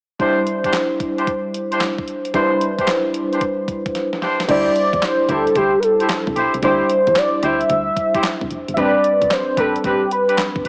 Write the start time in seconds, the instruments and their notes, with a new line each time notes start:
0.19 fm electric piano G3 D4 E4 C5, horn section D4 E4 G4 C5, kick, closed hi-hat
0.47 closed hi-hat
0.64 horn section D4 E4 G4 C5, kick, closed hi-hat
0.73 snare, clap, closed hi-hat
1.00 kick, closed hi-hat
1.17 horn section D4 E4 G4 C5, closed hi-hat
1.27 kick, closed hi-hat
1.54 closed hi-hat
1.71 horn section D4 E4 G4 C5, closed hi-hat
1.80 snare, clap, closed hi-hat
1.98 kick
2.08 closed hi-hat
2.25 closed hi-hat
2.34 fm electric piano G3 D4 E4 B4, horn section D4 E4 G4 C5, kick, closed hi-hat
2.43 fm electric piano C5
2.61 closed hi-hat
2.79 horn section D4 E4 G4 C5, kick, closed hi-hat
2.87 snare, clap, closed hi-hat
3.14 closed hi-hat
3.32 horn section D4 E4 G4 C5, closed hi-hat
3.41 kick, closed hi-hat
3.68 kick, closed hi-hat
3.86 kick, closed hi-hat
3.95 snare, closed hi-hat
4.13 snare
4.21 horn section D4 E4 G4 C5, snare, closed hi-hat
4.40 snare, closed hi-hat
4.48 fm bass D2, fm electric piano G3 D4 E4 C5, horn section E4 G4 C5, soft synth lead D5, kick, closed hi-hat, crash
4.76 closed hi-hat
4.93 fm bass E2, kick, closed hi-hat
5.02 soft synth lead C5, snare, clap, closed hi-hat
5.28 fm bass D2, horn section E4 G4 C5, soft synth lead A4, kick, closed hi-hat
5.47 closed hi-hat
5.55 fm bass D2, horn section E4 G4 C5, soft synth lead G4, kick, closed hi-hat
5.79 soft synth lead B4, closed hi-hat
5.83 soft synth lead A4
6.00 horn section E4 G4 C5, closed hi-hat
6.09 snare, clap, closed hi-hat
6.27 fm bass C2, kick
6.36 fm bass B1, horn section E4 G4 C5, closed hi-hat
6.54 fm bass C2, closed hi-hat
6.62 fm bass D2, fm electric piano G3 D4 E4 C5, horn section E4 G4 C5, soft synth lead C5, kick, closed hi-hat
6.90 closed hi-hat
7.07 fm bass E2, kick, closed hi-hat
7.16 soft synth lead D5, snare, clap, closed hi-hat
7.43 fm bass D2, horn section E4 G4 C5, soft synth lead E5, closed hi-hat
7.61 closed hi-hat
7.70 fm bass D2, kick, closed hi-hat
7.97 kick, closed hi-hat
8.14 horn section E4 G4 C5, kick, closed hi-hat
8.23 snare, clap, closed hi-hat
8.41 fm bass C2, kick
8.51 fm bass F1, closed hi-hat
8.68 fm bass G1, closed hi-hat
8.74 fm bass A1, fm electric piano G3 C4, horn section C4 D4 G4 B4, soft synth lead E5, kick, closed hi-hat
8.78 fm electric piano D4 B4, soft synth lead D5
9.04 closed hi-hat
9.22 fm bass C2, kick, closed hi-hat
9.31 soft synth lead C5, snare, clap, closed hi-hat
9.57 fm bass A1, horn section C4 D4 G4 B4, soft synth lead A4, kick, closed hi-hat
9.76 closed hi-hat
9.84 fm bass A1, horn section C4 D4 G4 B4, soft synth lead G4, kick, closed hi-hat
10.11 soft synth lead B4, closed hi-hat
10.28 horn section C4 D4 G4 B4, closed hi-hat
10.38 snare, clap, closed hi-hat
10.56 fm bass G1, kick
10.64 fm bass F1, horn section C4 D4 G4 B4, closed hi-hat